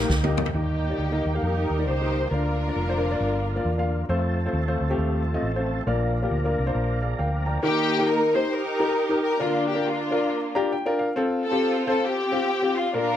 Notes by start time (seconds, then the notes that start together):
Already playing: G3 A#3 D#4 G4
0.10 D2, kick, snare
0.24 A#3 D#4 G4 D#5, high tom
0.38 mid tom
0.46 floor tom
0.54 D#2 D#3 G3 A#3 D#4 G4 D#5
0.90 A#3 D#4 G4 D5
0.98 D2
1.12 A#3 D#4 G4 D#5
1.26 D#2
1.35 A#3 D#4 G4 F5
1.42 F2 D#4 G4 A#4
1.70 D#2
1.79 A#3 D#4 G4 D5
1.86 C#2 D#4 G4 C5
2.01 A#3 D#4 G4 A#4
2.30 D2 D3 A#3 D4 F4 A#4 D5
2.68 A#3 D4 F4 D5
2.76 F1
2.89 A#3 D4 F4 C5
3.11 A#3 D4 F4 D5
3.20 G1
3.56 A#3 D4 F4 D5
3.65 E2
3.78 A#3 D4 F4 F5
4.09 F2 F3 A3 C4 F4 A4 C5
4.46 A3 C4 F4 C5
4.53 D#2
4.67 A3 C4 F4 C5
4.81 D2
4.90 A3 C4 F4 G4
4.98 D#2
5.34 A3 C4 F4 D#5
5.42 A1
5.55 A3 C4 F4 C5
5.87 A#1 A#2 F3 A#3 D4 F4 A#4 D5
6.22 A#3 D4 F4 G4
6.31 D2
6.44 A#3 D4 F4 A#4
6.59 C2
6.66 A#3 D4 F4 C5
6.75 A#1
7.02 G#4 D5 F5
7.19 D2 A#4 F5 G5
7.46 D5 G5 A#5
7.63 D#3 A#3 D#4 G4 A#4
7.98 D#4 G4 A#4
8.08 A#4
8.35 D#4 G4 C5
8.53 D#4 G4 A#4
8.80 D#4 G4 A#4
9.09 D#4 G4 A#4
9.23 A#4
9.39 D3 A#3 D4 F4 A#4
9.69 G4
9.75 D4 F4 A#4
9.86 A#3 D4 F4
10.11 D4 F4 A#4
10.55 D4 F4 G4 A#5
10.72 G5
10.86 D4 F4 A#4
10.99 F5
11.16 C4 F4 A4
11.44 C4 F4 A4
11.51 C4 F4 G4
11.87 C4 F4 A4 C5
12.05 C4 G4
12.32 C4 F4 G4
12.62 C4 F4 G4
12.77 F4
12.93 A#2 D4 F4 A#4